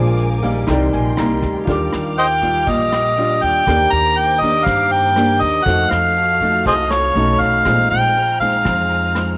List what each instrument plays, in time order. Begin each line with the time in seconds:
Already playing: upright bass A#1, nylon-string guitar A#2 F3 G#3 D4, grand piano F4 G#4 C5 D5, violin section A#4 F5 G#5 D6
0.17 closed hi-hat, shaker
0.43 nylon-string guitar G3 A#3 D#4, grand piano F5, kick, closed hi-hat, shaker
0.67 upright bass C2, nylon-string guitar C3, grand piano D#4 G4 A#4 G5, violin section A#4 G5 C6, kick, cross-stick, closed hi-hat, shaker
0.72 grand piano D5
0.93 upright bass A#1, grand piano G#5, closed hi-hat, shaker
1.17 upright bass C2, nylon-string guitar G3 A#3 D#4, grand piano A#5, cross-stick, closed hi-hat, shaker
1.42 upright bass D2, kick, closed hi-hat, shaker
1.65 upright bass D#2, nylon-string guitar D#3 G3 D4 F4, grand piano F4 G4 A#4, violin section F5 G5 D6 F6, kick, closed hi-hat
1.72 grand piano D6
1.93 upright bass D#2, cross-stick, closed hi-hat
2.18 harmonica C5 D#5 G5, closed hi-hat
2.42 nylon-string guitar G3 F4, kick, closed hi-hat
2.67 upright bass A#1, nylon-string guitar A#2, harmonica D#5, kick, closed hi-hat
2.92 cross-stick, closed hi-hat
3.17 nylon-string guitar G3 D4 F4, closed hi-hat
3.42 upright bass D#2, harmonica G5, kick, closed hi-hat
3.66 upright bass D#2, nylon-string guitar D#3 A#3 D4 G4, grand piano G4 A#4 D5, violin section C5 A#5 D6, kick, cross-stick, closed hi-hat
3.92 upright bass D#2, harmonica A#5, closed hi-hat
4.17 harmonica G5, closed hi-hat
4.41 nylon-string guitar A#3 D4 G4, harmonica D#5, kick, closed hi-hat
4.65 upright bass G2, nylon-string guitar D#3, harmonica F5, kick, cross-stick, closed hi-hat
4.91 harmonica G5, closed hi-hat
5.16 nylon-string guitar A#3 D4 G4, cross-stick, closed hi-hat
5.41 upright bass D#2, harmonica D#5, kick, closed hi-hat
5.63 upright bass F2, nylon-string guitar F3 A3, grand piano F#4 A4 C5, violin section F#4 A4 F5 F6, harmonica F#5, kick, closed hi-hat
5.67 nylon-string guitar D#4 F#4, grand piano D#5
5.90 upright bass F2, harmonica F5, cross-stick, closed hi-hat
6.16 closed hi-hat
6.41 nylon-string guitar A3 D#4 F#4, kick, closed hi-hat
6.66 upright bass C2, nylon-string guitar C3, harmonica G#4 C5 D#5, kick, closed hi-hat
6.91 harmonica C#5, cross-stick, closed hi-hat
7.15 upright bass B1, nylon-string guitar A3 C#4 D#4, grand piano F#4 A4 C#5 D#5, violin section C#5 B5, closed hi-hat
7.40 upright bass B1, harmonica F5, kick, closed hi-hat
7.63 upright bass A#1, nylon-string guitar A#2 G#3 C4 D#4, grand piano F4 G#4 C5, violin section G#4 C5 A#5, kick, cross-stick, closed hi-hat
7.70 grand piano D#5
7.90 upright bass A#1, harmonica G5, closed hi-hat
8.16 closed hi-hat
8.40 nylon-string guitar G#3 C4 D#4, harmonica F5, kick, closed hi-hat
8.65 upright bass F2, nylon-string guitar F3, kick, cross-stick, closed hi-hat
8.90 closed hi-hat
9.15 nylon-string guitar G#3 C4 D#4, cross-stick, closed hi-hat